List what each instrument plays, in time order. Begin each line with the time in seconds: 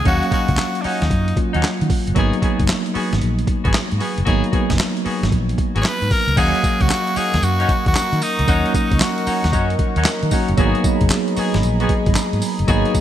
0.04 fingered electric bass D#2, tine electric piano F#3 A#3 C#4 F5, horn section C#4 D#4 F#4, tenor saxophone F#4, kick, closed hi-hat
0.23 closed hi-hat
0.31 horn section C#4 D#4 F#4, tenor saxophone F#4, kick, closed hi-hat
0.48 fingered electric bass C#2, kick, closed hi-hat
0.57 snare, clap, closed hi-hat
0.75 closed hi-hat
0.81 horn section C#4 D#4 F#4, tenor saxophone D4, muted fingered electric bass stroke, open hi-hat
0.86 tenor saxophone D#4
1.02 fingered electric bass D#2, snare, closed hi-hat
1.10 fingered electric bass F#2, kick, closed hi-hat
1.28 closed hi-hat
1.36 tine electric piano F#3 A#3 C#4 F4, kick, closed hi-hat
1.54 fingered electric bass D#2, horn section C#4 D#4 F#4, closed hi-hat
1.63 snare, clap, closed hi-hat
1.81 fingered electric bass D#3, closed hi-hat
1.90 kick, open hi-hat
2.07 fingered electric bass F#1, closed hi-hat
2.14 fingered electric bass G#1, tine electric piano F#3 A#3 B3 D#4, horn section B3 F#4 G#4, kick, closed hi-hat
2.33 closed hi-hat
2.41 horn section B3 F#4 G#4, kick, closed hi-hat
2.59 fingered electric bass F#1, kick, closed hi-hat
2.68 snare, clap, closed hi-hat
2.86 closed hi-hat
2.94 horn section B3 F#4 G#4, muted fingered electric bass stroke, open hi-hat
3.13 fingered electric bass G#1, snare, closed hi-hat
3.21 fingered electric bass A#1, closed hi-hat
3.39 closed hi-hat
3.47 kick, closed hi-hat
3.64 fingered electric bass G#1, horn section B3 F#4 G#4, kick, closed hi-hat
3.74 snare, clap, closed hi-hat
3.92 fingered electric bass G#2, closed hi-hat
3.99 horn section B3 F#4 G#4, open hi-hat
4.18 fingered electric bass F#1, closed hi-hat
4.25 fingered electric bass G#1, tine electric piano F#3 A#3 B3 D#4, horn section B3 F#4 G#4, kick, closed hi-hat
4.44 closed hi-hat
4.52 horn section B3 F#4 G#4, kick, closed hi-hat
4.70 fingered electric bass F#1, kick, snare, closed hi-hat
4.79 snare, clap, closed hi-hat
4.97 closed hi-hat
5.05 horn section B3 F#4 G#4, muted fingered electric bass stroke, open hi-hat
5.23 fingered electric bass G#1, snare, closed hi-hat
5.32 fingered electric bass A#1, kick, closed hi-hat
5.49 closed hi-hat
5.58 kick, closed hi-hat
5.75 fingered electric bass G#1, horn section B3 F#4 G#4, closed hi-hat
5.81 tenor saxophone C#5, snare, clap, closed hi-hat
5.86 tenor saxophone B4
6.02 fingered electric bass G#2, closed hi-hat
6.11 tenor saxophone A#4, kick, open hi-hat
6.27 fingered electric bass C#2, closed hi-hat
6.36 fingered electric bass D#2, tine electric piano F#3 A#3 C#4 F5, horn section C#4 D#4 F#4, tenor saxophone G#4, analog synth pad A#4 D#5 A#5 C#6, kick, closed hi-hat, crash, tambourine
6.55 closed hi-hat
6.64 kick, closed hi-hat, tambourine
6.81 fingered electric bass C#2, tenor saxophone F#4, kick, closed hi-hat
6.90 snare, clap, closed hi-hat, tambourine
7.07 closed hi-hat
7.16 horn section C#4 D#4 F#4, tenor saxophone G#4, muted fingered electric bass stroke, open hi-hat, tambourine
7.34 fingered electric bass D#2, snare, closed hi-hat
7.43 fingered electric bass F#2, tenor saxophone F#4, closed hi-hat, tambourine
7.59 horn section C#4 D#4 F#4, closed hi-hat
7.69 kick, closed hi-hat
7.86 fingered electric bass D#2, tenor saxophone F#4, kick, closed hi-hat
7.95 snare, clap, closed hi-hat, tambourine
8.13 fingered electric bass D#3, closed hi-hat
8.22 tenor saxophone D#4, open hi-hat, tambourine
8.39 fingered electric bass C#2, closed hi-hat
8.47 fingered electric bass D#2, tine electric piano F#3 A#3 C#4 D#4, horn section C#4 D#4 F#4, kick, closed hi-hat, tambourine
8.66 closed hi-hat
8.74 tenor saxophone D#4, kick, closed hi-hat, tambourine
8.91 fingered electric bass C#2, kick, closed hi-hat
9.00 tenor saxophone F#4, snare, clap, closed hi-hat, tambourine
9.18 closed hi-hat
9.26 horn section C#4 D#4 F#4, muted fingered electric bass stroke, open hi-hat, tambourine
9.44 fingered electric bass D#2, snare, closed hi-hat
9.52 fingered electric bass F#2, horn section C#4 D#4 F#4, kick, closed hi-hat, tambourine
9.70 closed hi-hat
9.79 kick, closed hi-hat
9.96 fingered electric bass D#2, horn section C#4 D#4 F#4, closed hi-hat
10.05 snare, clap, closed hi-hat, tambourine
10.23 fingered electric bass D#3, closed hi-hat
10.31 tine electric piano F#3 A#3 C#4 F#4, horn section C#4 D#4 F#4, kick, open hi-hat, tambourine
10.48 fingered electric bass F#1, closed hi-hat
10.57 fingered electric bass G#1, tine electric piano F#3 A#3 B3 D4, horn section B3 F#4 G#4, analog synth pad G#4 B5, kick, closed hi-hat, tambourine
10.66 tine electric piano D#4
10.75 closed hi-hat
10.84 kick, closed hi-hat, tambourine
11.01 fingered electric bass F#1, kick, closed hi-hat
11.10 snare, clap, closed hi-hat, tambourine
11.28 closed hi-hat
11.36 horn section B3 F#4 G#4, muted fingered electric bass stroke, open hi-hat, tambourine
11.54 fingered electric bass G#1, snare, closed hi-hat
11.63 fingered electric bass A#1, closed hi-hat, tambourine
11.80 horn section B3 F#4 G#4, closed hi-hat
11.89 kick, closed hi-hat
12.06 fingered electric bass G#1, kick, closed hi-hat
12.15 snare, clap, closed hi-hat, tambourine
12.33 fingered electric bass G#2, closed hi-hat
12.42 open hi-hat, tambourine
12.59 fingered electric bass F#1, closed hi-hat
12.67 fingered electric bass G#1, tine electric piano F#3 A#3 B3 D#4, horn section B3 F#4 G#4, kick, closed hi-hat, tambourine
12.85 closed hi-hat
12.95 kick, closed hi-hat, tambourine